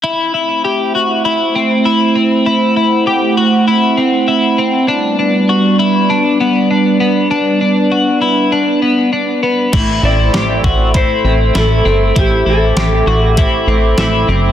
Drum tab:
CC |--------|--------|--------|--------|
HH |--------|--------|--------|--------|
SD |--------|--------|--------|--------|
BD |--------|--------|--------|--------|

CC |x-------|--------|
HH |x-x-x-x-|x-x-x-x-|
SD |--o---o-|--o---o-|
BD |o--oo---|o---o---|